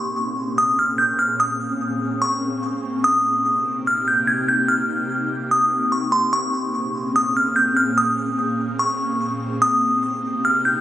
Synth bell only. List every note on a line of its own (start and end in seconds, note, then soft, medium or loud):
0.00 0.54 C#6 loud
0.58 0.77 D#6 medium
0.79 0.98 F6 medium
0.98 1.18 G6 medium
1.19 1.39 F6 medium
1.40 2.18 D#6 loud
2.22 3.00 C#6 loud
3.04 3.82 D#6 loud
3.87 4.06 F6 medium
4.08 4.27 G6 medium
4.27 4.47 G#6 medium
4.49 4.68 G6 medium
4.68 5.47 F6 medium
5.51 5.90 D#6 medium
5.92 6.12 C#6 medium
6.12 6.32 C6 medium
6.33 7.11 C#6 loud
7.16 7.35 D#6 medium
7.37 7.56 F6 medium
7.56 7.76 G6 medium
7.77 7.96 F6 medium
7.98 8.76 D#6 loud
8.79 9.58 C#6 loud
9.62 10.40 D#6 loud
10.45 10.64 F6 medium
10.65 10.81 G6 medium